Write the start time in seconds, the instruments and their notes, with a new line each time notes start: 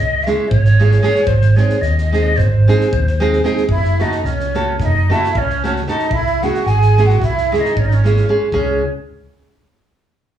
Already playing: fingered electric bass C#2, ney D#5
0.23 nylon-string guitar G#3, ney E5, snare
0.28 nylon-string guitar C#4 E4 G#4
0.48 fingered electric bass G#1, ney C#5, kick
0.65 snare
0.79 nylon-string guitar G#3 C#4 E4 G#4, snare
0.91 snare
1.00 nylon-string guitar G#3 C#4 E4 G#4, ney C#5, snare
1.15 snare
1.24 fingered electric bass G#1, ney C5, kick
1.42 snare
1.55 nylon-string guitar G#3 C4 D#4 G#4, ney C#5, snare
1.70 snare
1.81 fingered electric bass D#2, ney D#5, snare
1.98 snare
2.04 ney D#5
2.12 nylon-string guitar G#3 C4 D#4 G#4, snare
2.20 ney D#5
2.37 fingered electric bass G#1, ney C5, kick, snare
2.68 nylon-string guitar G#3 C4 D#4 G#4, snare
2.81 snare
2.93 fingered electric bass D#2, kick
3.07 snare
3.20 nylon-string guitar G#3 C4 D#4 G#4, snare
3.33 snare
3.44 nylon-string guitar G#3 C4 D#4 G#4, snare
3.57 snare
3.69 fingered electric bass F#1, accordion E4, ney E5, kick
3.84 snare
4.00 nylon-string guitar A3 C#4 F#4 A4, accordion D#4, ney D#5, snare
4.12 snare
4.24 fingered electric bass C#2, accordion C#4, ney C#5, snare
4.40 snare
4.54 nylon-string guitar A3 C#4 F#4 A4, snare
4.80 fingered electric bass F#1, accordion D#4, ney E5, kick, snare
4.85 ney D#5
5.10 nylon-string guitar A3 C#4 F#4 A4, accordion E4, ney E5, snare
5.24 snare
5.35 fingered electric bass C#2, accordion C#4, ney C#5, kick
5.50 snare
5.64 nylon-string guitar A3 C#4 F#4 A4, accordion C#4, ney C#5, snare
5.76 snare
5.87 nylon-string guitar A3 C#4 F#4 A4, accordion D#4, ney D#5, snare
5.99 snare
6.10 fingered electric bass C#2, accordion E4, ney E5, kick
6.27 snare
6.42 nylon-string guitar G#3 C#4 E4 G#4, accordion F#4, ney F#5, snare
6.55 snare
6.66 fingered electric bass G#1, accordion G#4, ney G#5, snare
6.82 snare
6.98 nylon-string guitar G#3 C#4 E4 G#4, snare
7.06 accordion F#4, ney F#5, snare
7.21 fingered electric bass C#2, accordion E4, ney E5, kick, snare
7.38 snare
7.52 nylon-string guitar G#3 C#4 E4 G#4, snare
7.60 accordion D#4, ney D#5
7.65 snare
7.76 fingered electric bass G#1, accordion C#4, ney C#5, kick
7.85 accordion D#4, ney D#5
7.91 accordion C#4, ney C#5, snare
8.04 nylon-string guitar G#3 C#4 E4 G#4, snare
8.17 snare
8.29 nylon-string guitar G#3 C#4 E4 G#4
8.52 fingered electric bass C#2, nylon-string guitar G#3 C#4 E4 G#4, accordion C#4, ney C#5, kick